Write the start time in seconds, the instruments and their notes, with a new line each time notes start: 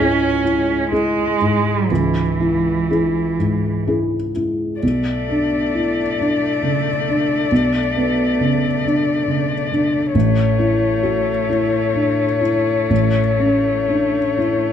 Already playing: felt piano C#2 G#2, cello C#4
0.00 felt piano E4 G#4
0.45 felt piano E4
0.91 cello G#3, felt piano E4 G#4
1.41 felt piano G#2
1.90 felt piano C#2, cello E3
2.40 felt piano E4
2.90 felt piano E4 G#4
3.39 felt piano G#2
3.87 felt piano E4 G#4
4.36 felt piano E4
4.82 felt piano B1, cello A3, violin D5
5.29 felt piano D4
5.74 felt piano E4
6.19 felt piano D4
6.63 felt piano C#3
7.08 felt piano D4
7.52 felt piano B1
7.96 felt piano B3
8.41 felt piano C#3
8.85 felt piano D4
9.28 felt piano C#3
9.71 felt piano D4
10.14 felt piano A1, cello A3, violin C#5
10.59 felt piano E4
11.03 felt piano F#4
11.49 felt piano E4
11.93 felt piano D4
12.41 felt piano E4
12.90 felt piano A1
13.39 felt piano C#4
13.88 felt piano D4
14.38 felt piano E4